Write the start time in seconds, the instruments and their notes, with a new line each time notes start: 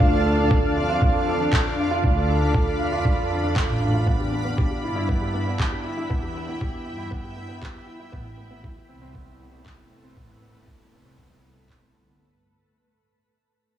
Already playing: ambient pad D4 D5 F5 A5, grand piano F4 A4
0.00 double bass section D2, grand piano D4, kick
0.13 grand piano A4
0.26 grand piano A4
0.38 grand piano D4
0.46 ambient pad B5
0.51 grand piano A4, kick
0.64 grand piano A4
0.77 double bass section F2, grand piano F4
0.89 grand piano F4
1.02 grand piano D4, kick
1.15 grand piano A4
1.28 grand piano A4
1.41 grand piano D4
1.53 grand piano A4, kick, clap
1.66 grand piano A4
1.79 grand piano F4
1.91 grand piano F4
2.04 double bass section D2, grand piano D4, kick
2.16 grand piano A4
2.29 grand piano A4
2.42 grand piano D4
2.54 kick
2.67 grand piano A4
2.79 double bass section F2, grand piano F4
2.92 grand piano F4
3.05 grand piano D4, kick
3.18 grand piano A4
3.30 grand piano A4
3.43 grand piano D4
3.56 kick, clap
3.69 double bass section A1, grand piano A4
3.81 double bass section A1, grand piano F4
3.94 grand piano F4
4.07 double bass section E2, grand piano B3, ambient pad E4, kick
4.20 grand piano G4
4.32 grand piano B3
4.44 grand piano B3, ambient pad E5
4.58 grand piano G4, kick
4.71 grand piano G4
4.83 double bass section G2, grand piano E4
4.88 ambient pad G5
4.96 grand piano E4
5.09 grand piano B3, kick
5.21 grand piano G4
5.34 grand piano B3
5.47 grand piano B3
5.59 grand piano G4, kick, clap
5.72 grand piano G4
5.84 grand piano E4
5.97 grand piano E4
6.10 double bass section E2, grand piano B3, kick
6.22 grand piano G4
6.35 grand piano B3
6.48 grand piano B3
6.61 grand piano G4, kick
6.74 grand piano G4
6.86 double bass section G2, grand piano E4
6.98 grand piano E4
7.11 grand piano B3, kick
7.24 grand piano G4
7.36 grand piano B3
7.49 grand piano B3
7.61 grand piano G4, kick, clap
7.74 grand piano G4
7.87 grand piano E4
8.00 grand piano E4
8.12 double bass section A1, ambient pad A3, grand piano B3, kick
8.25 grand piano E4
8.37 grand piano B3
8.44 ambient pad A4
8.51 grand piano B3
8.63 grand piano E4, kick
8.69 ambient pad B4
8.76 grand piano E4
8.89 double bass section C2, grand piano C4
9.02 grand piano C4
9.15 grand piano B3, kick
9.27 grand piano E4
9.40 grand piano B3
9.52 grand piano B3
9.65 grand piano E4, kick, clap
9.78 grand piano E4
9.91 grand piano C4
10.03 grand piano C4
10.16 double bass section A1, grand piano B3, kick
10.29 grand piano E4
10.42 grand piano B3
10.55 grand piano B3
10.67 grand piano E4, kick
10.80 grand piano E4
10.93 double bass section C2, grand piano C4
11.05 grand piano C4
11.18 grand piano B3, kick
11.31 grand piano E4
11.44 grand piano E4
11.57 grand piano A4
11.69 double bass section E1, grand piano C4, kick, clap
11.82 grand piano C4
11.95 double bass section G1, grand piano B3
12.08 grand piano B3